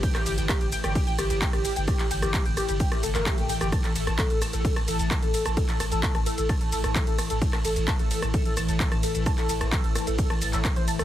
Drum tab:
RD |x---x---x---x---|x---x---x---x---|x---x---x---x---|x---x---x---x---|
HH |xxoxxxoxxxoxxxox|xxoxxxoxxxoxxxox|xxoxxxoxxxoxxxox|xxoxxxoxxxoxxxox|
SH |xxxxxxxxxxxxxxxx|xxxxxxxxxxxxxxxx|xxxxxxxxxxxxxxxx|xxxxxxxxxxxxxxxx|
CP |-x--x-------x---|-x--x------xx---|-x--x-------x---|-x--x-------x---|
SD |-r--r--r--r--r--|r--r--r--r--r--r|r--r--r--r--r--r|--r--r--r--r--r-|
BD |o---o---o---o---|o---o---o---o---|o---o---o---o---|o---o---o---o---|

RD |x---x---x---x---|x---x---x---x---|
HH |xxoxxxoxxxoxxxox|xxoxxxoxxxoxxxox|
SH |xxxxxxxxxxxxxxxx|xxxxxxxxxxxxxxxx|
CP |-x--x-------x---|-x--x------xx---|
SD |-r--r--r--r--r--|r--r--r--r--r--r|
BD |o---o---o---o---|o---o---o---o---|